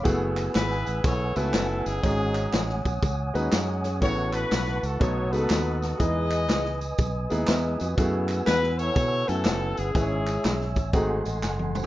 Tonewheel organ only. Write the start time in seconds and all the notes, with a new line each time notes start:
0.05 B4 F#5 G#5 E6
2.03 C#5 F#5 G#5 D#6
4.02 B4 F#5 A5 C#6
5.01 D#6
5.99 D#5 G#5
7.98 F#5 E6
9.95 C#5 E5
10.94 A4 F#5 C6